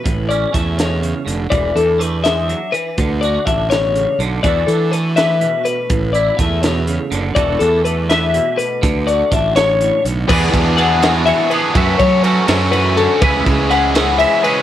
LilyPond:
<<
  \new Staff \with { instrumentName = "Clean electric guitar" } { \time 6/8 \key e \mixolydian \tempo 4. = 82 b'8 d''8 e''8 cis''4 r8 | d''8 a'8 b'8 e''4 b'8~ | b'8 d''8 e''8 cis''4 r8 | d''8 a'8 b'8 e''4 b'8~ |
b'8 d''8 e''8 cis''4 r8 | d''8 a'8 b'8 e''4 b'8~ | b'8 d''8 e''8 cis''4 r8 | b'4 fis''4 e''8 b'8~ |
b'8 cis''8 b'4 b'8 a'8 | b'4 fis''4 e''8 b'8 | }
  \new Staff \with { instrumentName = "Overdriven electric guitar" } { \time 6/8 \key e \mixolydian r2. | r2. | r2. | r2. |
r2. | r2. | r2. | <e b d' gis'>4 <e b d' gis'>8 <e b d' gis'>4 <b d' gis'>8 |
<fis a cis' fis'>4 <fis a cis' fis'>8 <fis a cis' fis'>4 <a cis' fis'>8 | <cis e gis cis' gis'>4 <e gis cis' gis'>8 <cis e gis cis' gis'>4 <gis cis' gis'>8 | }
  \new Staff \with { instrumentName = "Clean electric guitar" } { \time 6/8 \key e \mixolydian << { r8 cis'2~ cis'8 | r8 d'2~ d'8 | r8 fis'2~ fis'8 | <a d' fis' a'>8 d'4 b'4. |
r8 e'2~ e'8 | <a d' fis' a'>8 d'4 b'4. | r8 fis'4 cis''4. | <b fis' gis' d''>4 gis'8 fis'8 cis''8 gis'8 |
e''4 a'2 | <cis' e' b' e''>4 b'8 e'8 e''8 b'8 | } \\ { a,4 a8 b,8 cis8 d8 | e4 a8 gis8 fis8 e8 | d4 d'8 b,8 cis8 d8 | e4 a4 b,4 |
a,4 a8 b,8 cis8 d8 | e4 a4 b,4 | d4 d'4 a,4 | e4 b4 e4 |
fis4 cis'8 fis8 e8 d8 | cis4 cis'4 gis4 | } >> }
  \new Staff \with { instrumentName = "Fingered electric bass" } { \clef bass \time 6/8 \key e \mixolydian a,,4 e,4. f,,8 | e,,8 e,2 r8 | d,4 a,,4. b,,8 | e,8 e2 r8 |
a,,4 e,4. fis,,8 | e,,8 e,2 r8 | d,4 a,,4. b,,8 | e,8 e,2 r8 |
fis,8 fis4 fis,4. | cis,8 cis,2 r8 | }
  \new DrumStaff \with { instrumentName = "Drums" } \drummode { \time 6/8 <hh bd>8 hh8 <hh bd>8 <hh sn>8 hh8 hh8 | <hh bd>8 hh8 hh8 <hh sn>8 hh8 hh8 | <hh bd>8 hh8 <hh bd>8 <hh sn>8 hh8 hh8 | <hh bd>8 hh8 hh8 <hh sn>8 hh8 hh8 |
<hh bd>8 hh8 <hh bd>8 <hh sn>8 hh8 hh8 | <hh bd>8 hh8 hh8 <hh sn>8 hh8 hh8 | <hh bd>8 hh8 <hh bd>8 <hh sn>8 hh8 hh8 | <cymc bd>8 <bd cymr>8 cymr8 <cymr sn>8 cymr8 cymr8 |
<bd cymr>8 <bd cymr>8 cymr8 <cymr sn>8 cymr8 cymr8 | <bd cymr>8 <bd cymr>8 cymr8 <cymr sn>8 cymr8 cymr8 | }
>>